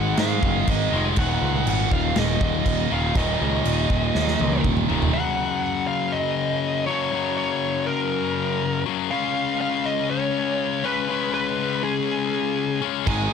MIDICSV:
0, 0, Header, 1, 6, 480
1, 0, Start_track
1, 0, Tempo, 495868
1, 1135, Time_signature, 4, 2, 24, 8
1, 12903, End_track
2, 0, Start_track
2, 0, Title_t, "Lead electric guitar"
2, 0, Program_c, 0, 29
2, 0, Note_on_c, 0, 78, 84
2, 183, Note_off_c, 0, 78, 0
2, 187, Note_on_c, 0, 77, 106
2, 675, Note_off_c, 0, 77, 0
2, 678, Note_on_c, 0, 75, 112
2, 1002, Note_off_c, 0, 75, 0
2, 1150, Note_on_c, 0, 78, 102
2, 1629, Note_off_c, 0, 78, 0
2, 1641, Note_on_c, 0, 78, 96
2, 1852, Note_off_c, 0, 78, 0
2, 1867, Note_on_c, 0, 77, 105
2, 2108, Note_off_c, 0, 77, 0
2, 2115, Note_on_c, 0, 75, 97
2, 2348, Note_off_c, 0, 75, 0
2, 2359, Note_on_c, 0, 75, 93
2, 2830, Note_on_c, 0, 77, 83
2, 2841, Note_off_c, 0, 75, 0
2, 3066, Note_on_c, 0, 75, 89
2, 3069, Note_off_c, 0, 77, 0
2, 4460, Note_off_c, 0, 75, 0
2, 4972, Note_on_c, 0, 78, 99
2, 5433, Note_off_c, 0, 78, 0
2, 5445, Note_on_c, 0, 78, 107
2, 5680, Note_off_c, 0, 78, 0
2, 5684, Note_on_c, 0, 77, 117
2, 5928, Note_on_c, 0, 75, 104
2, 5934, Note_off_c, 0, 77, 0
2, 6610, Note_off_c, 0, 75, 0
2, 6644, Note_on_c, 0, 73, 104
2, 7127, Note_off_c, 0, 73, 0
2, 7139, Note_on_c, 0, 73, 100
2, 7614, Note_on_c, 0, 70, 85
2, 7627, Note_off_c, 0, 73, 0
2, 8531, Note_off_c, 0, 70, 0
2, 8818, Note_on_c, 0, 77, 111
2, 9260, Note_off_c, 0, 77, 0
2, 9304, Note_on_c, 0, 77, 99
2, 9540, Note_on_c, 0, 75, 113
2, 9543, Note_off_c, 0, 77, 0
2, 9779, Note_off_c, 0, 75, 0
2, 9783, Note_on_c, 0, 73, 97
2, 10501, Note_on_c, 0, 71, 99
2, 10517, Note_off_c, 0, 73, 0
2, 10967, Note_off_c, 0, 71, 0
2, 10978, Note_on_c, 0, 71, 107
2, 11455, Note_off_c, 0, 71, 0
2, 11459, Note_on_c, 0, 68, 88
2, 12377, Note_off_c, 0, 68, 0
2, 12660, Note_on_c, 0, 80, 91
2, 12903, Note_off_c, 0, 80, 0
2, 12903, End_track
3, 0, Start_track
3, 0, Title_t, "Distorted electric guitar"
3, 0, Program_c, 1, 30
3, 0, Note_on_c, 1, 44, 103
3, 0, Note_on_c, 1, 51, 83
3, 0, Note_on_c, 1, 56, 110
3, 879, Note_off_c, 1, 44, 0
3, 887, Note_off_c, 1, 51, 0
3, 888, Note_off_c, 1, 56, 0
3, 900, Note_on_c, 1, 56, 83
3, 914, Note_on_c, 1, 51, 81
3, 927, Note_on_c, 1, 44, 63
3, 1123, Note_off_c, 1, 56, 0
3, 1130, Note_off_c, 1, 51, 0
3, 1136, Note_off_c, 1, 44, 0
3, 1137, Note_on_c, 1, 39, 87
3, 1151, Note_on_c, 1, 46, 98
3, 1162, Note_on_c, 1, 51, 110
3, 2801, Note_off_c, 1, 39, 0
3, 2804, Note_off_c, 1, 51, 0
3, 2808, Note_off_c, 1, 46, 0
3, 2816, Note_on_c, 1, 51, 86
3, 2831, Note_on_c, 1, 46, 84
3, 2846, Note_on_c, 1, 39, 65
3, 3040, Note_off_c, 1, 51, 0
3, 3042, Note_off_c, 1, 39, 0
3, 3048, Note_off_c, 1, 46, 0
3, 3053, Note_on_c, 1, 39, 87
3, 3066, Note_on_c, 1, 46, 99
3, 3079, Note_on_c, 1, 51, 98
3, 4718, Note_off_c, 1, 39, 0
3, 4721, Note_off_c, 1, 51, 0
3, 4724, Note_off_c, 1, 46, 0
3, 4732, Note_on_c, 1, 51, 84
3, 4747, Note_on_c, 1, 46, 69
3, 4759, Note_on_c, 1, 39, 73
3, 4958, Note_off_c, 1, 51, 0
3, 4965, Note_off_c, 1, 39, 0
3, 4965, Note_off_c, 1, 46, 0
3, 4969, Note_on_c, 1, 42, 79
3, 4985, Note_on_c, 1, 49, 97
3, 4996, Note_on_c, 1, 54, 103
3, 6634, Note_off_c, 1, 42, 0
3, 6640, Note_off_c, 1, 54, 0
3, 6642, Note_off_c, 1, 49, 0
3, 6652, Note_on_c, 1, 54, 80
3, 6666, Note_on_c, 1, 49, 69
3, 6681, Note_on_c, 1, 42, 66
3, 6875, Note_off_c, 1, 42, 0
3, 6876, Note_off_c, 1, 54, 0
3, 6883, Note_off_c, 1, 49, 0
3, 6886, Note_on_c, 1, 42, 96
3, 6902, Note_on_c, 1, 49, 105
3, 6916, Note_on_c, 1, 54, 105
3, 8552, Note_off_c, 1, 42, 0
3, 8559, Note_off_c, 1, 49, 0
3, 8563, Note_off_c, 1, 54, 0
3, 8574, Note_on_c, 1, 54, 76
3, 8592, Note_on_c, 1, 49, 72
3, 8606, Note_on_c, 1, 42, 70
3, 8796, Note_off_c, 1, 54, 0
3, 8801, Note_off_c, 1, 49, 0
3, 8812, Note_off_c, 1, 42, 0
3, 8812, Note_on_c, 1, 49, 101
3, 8832, Note_on_c, 1, 56, 90
3, 8841, Note_on_c, 1, 61, 115
3, 10476, Note_off_c, 1, 49, 0
3, 10478, Note_off_c, 1, 61, 0
3, 10490, Note_on_c, 1, 61, 75
3, 10503, Note_off_c, 1, 56, 0
3, 10507, Note_on_c, 1, 56, 85
3, 10521, Note_on_c, 1, 49, 75
3, 10715, Note_off_c, 1, 61, 0
3, 10723, Note_off_c, 1, 49, 0
3, 10735, Note_on_c, 1, 49, 91
3, 10744, Note_off_c, 1, 56, 0
3, 10748, Note_on_c, 1, 56, 100
3, 10763, Note_on_c, 1, 61, 107
3, 12393, Note_off_c, 1, 61, 0
3, 12399, Note_off_c, 1, 49, 0
3, 12404, Note_on_c, 1, 61, 84
3, 12417, Note_off_c, 1, 56, 0
3, 12421, Note_on_c, 1, 56, 74
3, 12434, Note_on_c, 1, 49, 76
3, 12633, Note_off_c, 1, 61, 0
3, 12643, Note_off_c, 1, 49, 0
3, 12647, Note_on_c, 1, 44, 97
3, 12657, Note_off_c, 1, 56, 0
3, 12661, Note_on_c, 1, 51, 107
3, 12675, Note_on_c, 1, 56, 96
3, 12903, Note_off_c, 1, 44, 0
3, 12903, Note_off_c, 1, 51, 0
3, 12903, Note_off_c, 1, 56, 0
3, 12903, End_track
4, 0, Start_track
4, 0, Title_t, "Distorted electric guitar"
4, 0, Program_c, 2, 30
4, 174, Note_on_c, 2, 44, 81
4, 196, Note_on_c, 2, 51, 93
4, 212, Note_on_c, 2, 56, 89
4, 1120, Note_off_c, 2, 44, 0
4, 1131, Note_off_c, 2, 51, 0
4, 1139, Note_off_c, 2, 56, 0
4, 2081, Note_on_c, 2, 39, 83
4, 2102, Note_on_c, 2, 46, 90
4, 2121, Note_on_c, 2, 51, 97
4, 3026, Note_off_c, 2, 39, 0
4, 3044, Note_off_c, 2, 46, 0
4, 3053, Note_off_c, 2, 51, 0
4, 4003, Note_on_c, 2, 39, 76
4, 4026, Note_on_c, 2, 46, 86
4, 4045, Note_on_c, 2, 51, 88
4, 4953, Note_off_c, 2, 39, 0
4, 4964, Note_off_c, 2, 46, 0
4, 4974, Note_off_c, 2, 51, 0
4, 12903, End_track
5, 0, Start_track
5, 0, Title_t, "Picked electric bass"
5, 0, Program_c, 3, 34
5, 0, Note_on_c, 3, 32, 85
5, 127, Note_off_c, 3, 32, 0
5, 175, Note_on_c, 3, 44, 98
5, 368, Note_off_c, 3, 44, 0
5, 415, Note_on_c, 3, 30, 108
5, 608, Note_off_c, 3, 30, 0
5, 654, Note_on_c, 3, 32, 86
5, 847, Note_off_c, 3, 32, 0
5, 892, Note_on_c, 3, 29, 101
5, 1086, Note_off_c, 3, 29, 0
5, 1133, Note_on_c, 3, 27, 94
5, 1327, Note_off_c, 3, 27, 0
5, 1369, Note_on_c, 3, 37, 96
5, 1564, Note_off_c, 3, 37, 0
5, 1608, Note_on_c, 3, 32, 88
5, 1803, Note_off_c, 3, 32, 0
5, 1855, Note_on_c, 3, 27, 90
5, 2047, Note_off_c, 3, 27, 0
5, 2099, Note_on_c, 3, 27, 94
5, 2290, Note_off_c, 3, 27, 0
5, 2334, Note_on_c, 3, 27, 102
5, 2527, Note_off_c, 3, 27, 0
5, 2574, Note_on_c, 3, 27, 85
5, 2767, Note_off_c, 3, 27, 0
5, 2825, Note_on_c, 3, 27, 85
5, 3014, Note_off_c, 3, 27, 0
5, 3053, Note_on_c, 3, 27, 112
5, 3246, Note_off_c, 3, 27, 0
5, 3305, Note_on_c, 3, 37, 97
5, 3493, Note_off_c, 3, 37, 0
5, 3540, Note_on_c, 3, 27, 90
5, 3730, Note_off_c, 3, 27, 0
5, 3774, Note_on_c, 3, 27, 87
5, 3966, Note_off_c, 3, 27, 0
5, 4023, Note_on_c, 3, 39, 98
5, 4212, Note_off_c, 3, 39, 0
5, 4266, Note_on_c, 3, 37, 105
5, 4453, Note_off_c, 3, 37, 0
5, 4495, Note_on_c, 3, 27, 83
5, 4687, Note_off_c, 3, 27, 0
5, 4744, Note_on_c, 3, 27, 93
5, 4932, Note_off_c, 3, 27, 0
5, 12652, Note_on_c, 3, 32, 101
5, 12845, Note_off_c, 3, 32, 0
5, 12903, End_track
6, 0, Start_track
6, 0, Title_t, "Drums"
6, 167, Note_on_c, 9, 49, 64
6, 172, Note_on_c, 9, 38, 116
6, 264, Note_off_c, 9, 49, 0
6, 269, Note_off_c, 9, 38, 0
6, 414, Note_on_c, 9, 36, 103
6, 511, Note_off_c, 9, 36, 0
6, 653, Note_on_c, 9, 49, 74
6, 656, Note_on_c, 9, 36, 104
6, 749, Note_off_c, 9, 49, 0
6, 753, Note_off_c, 9, 36, 0
6, 1125, Note_on_c, 9, 49, 69
6, 1134, Note_on_c, 9, 36, 123
6, 1221, Note_off_c, 9, 49, 0
6, 1231, Note_off_c, 9, 36, 0
6, 1613, Note_on_c, 9, 49, 78
6, 1710, Note_off_c, 9, 49, 0
6, 1854, Note_on_c, 9, 36, 95
6, 1951, Note_off_c, 9, 36, 0
6, 2088, Note_on_c, 9, 49, 68
6, 2093, Note_on_c, 9, 38, 111
6, 2185, Note_off_c, 9, 49, 0
6, 2190, Note_off_c, 9, 38, 0
6, 2333, Note_on_c, 9, 36, 98
6, 2429, Note_off_c, 9, 36, 0
6, 2573, Note_on_c, 9, 36, 90
6, 2573, Note_on_c, 9, 49, 70
6, 2670, Note_off_c, 9, 36, 0
6, 2670, Note_off_c, 9, 49, 0
6, 3053, Note_on_c, 9, 49, 66
6, 3054, Note_on_c, 9, 36, 124
6, 3150, Note_off_c, 9, 49, 0
6, 3151, Note_off_c, 9, 36, 0
6, 3536, Note_on_c, 9, 49, 66
6, 3633, Note_off_c, 9, 49, 0
6, 3776, Note_on_c, 9, 36, 91
6, 3872, Note_off_c, 9, 36, 0
6, 4017, Note_on_c, 9, 38, 67
6, 4114, Note_off_c, 9, 38, 0
6, 4138, Note_on_c, 9, 38, 60
6, 4235, Note_off_c, 9, 38, 0
6, 4255, Note_on_c, 9, 48, 82
6, 4351, Note_off_c, 9, 48, 0
6, 4375, Note_on_c, 9, 48, 70
6, 4472, Note_off_c, 9, 48, 0
6, 4495, Note_on_c, 9, 47, 91
6, 4496, Note_on_c, 9, 36, 83
6, 4592, Note_off_c, 9, 47, 0
6, 4593, Note_off_c, 9, 36, 0
6, 4615, Note_on_c, 9, 45, 86
6, 4712, Note_off_c, 9, 45, 0
6, 4740, Note_on_c, 9, 43, 86
6, 4836, Note_off_c, 9, 43, 0
6, 4861, Note_on_c, 9, 43, 96
6, 4957, Note_off_c, 9, 43, 0
6, 12652, Note_on_c, 9, 36, 118
6, 12654, Note_on_c, 9, 49, 64
6, 12749, Note_off_c, 9, 36, 0
6, 12751, Note_off_c, 9, 49, 0
6, 12903, End_track
0, 0, End_of_file